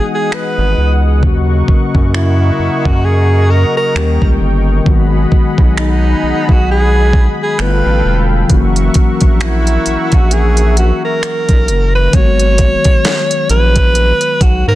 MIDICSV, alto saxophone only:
0, 0, Header, 1, 2, 480
1, 0, Start_track
1, 0, Key_signature, 5, "minor"
1, 0, Tempo, 909091
1, 648, Time_signature, 4, 2, 24, 8
1, 7788, End_track
2, 0, Start_track
2, 0, Title_t, "Alto saxophone"
2, 0, Program_c, 0, 65
2, 76, Note_on_c, 0, 68, 86
2, 180, Note_on_c, 0, 71, 98
2, 188, Note_off_c, 0, 68, 0
2, 553, Note_off_c, 0, 71, 0
2, 1134, Note_on_c, 0, 64, 84
2, 1511, Note_on_c, 0, 66, 85
2, 1519, Note_off_c, 0, 64, 0
2, 1611, Note_on_c, 0, 68, 103
2, 1619, Note_off_c, 0, 66, 0
2, 1851, Note_on_c, 0, 70, 98
2, 1859, Note_off_c, 0, 68, 0
2, 1988, Note_off_c, 0, 70, 0
2, 1991, Note_on_c, 0, 70, 99
2, 2309, Note_off_c, 0, 70, 0
2, 3057, Note_on_c, 0, 63, 87
2, 3439, Note_on_c, 0, 66, 85
2, 3447, Note_off_c, 0, 63, 0
2, 3534, Note_off_c, 0, 66, 0
2, 3542, Note_on_c, 0, 68, 104
2, 3893, Note_off_c, 0, 68, 0
2, 3921, Note_on_c, 0, 68, 94
2, 4020, Note_on_c, 0, 71, 94
2, 4027, Note_off_c, 0, 68, 0
2, 4393, Note_off_c, 0, 71, 0
2, 4982, Note_on_c, 0, 64, 85
2, 5356, Note_on_c, 0, 66, 83
2, 5364, Note_off_c, 0, 64, 0
2, 5455, Note_on_c, 0, 68, 98
2, 5463, Note_off_c, 0, 66, 0
2, 5692, Note_off_c, 0, 68, 0
2, 5695, Note_on_c, 0, 66, 76
2, 5822, Note_off_c, 0, 66, 0
2, 5834, Note_on_c, 0, 70, 88
2, 6289, Note_off_c, 0, 70, 0
2, 6310, Note_on_c, 0, 71, 86
2, 6415, Note_on_c, 0, 73, 110
2, 6423, Note_off_c, 0, 71, 0
2, 7129, Note_off_c, 0, 73, 0
2, 7132, Note_on_c, 0, 71, 109
2, 7617, Note_on_c, 0, 66, 94
2, 7625, Note_off_c, 0, 71, 0
2, 7750, Note_off_c, 0, 66, 0
2, 7753, Note_on_c, 0, 70, 100
2, 7788, Note_off_c, 0, 70, 0
2, 7788, End_track
0, 0, End_of_file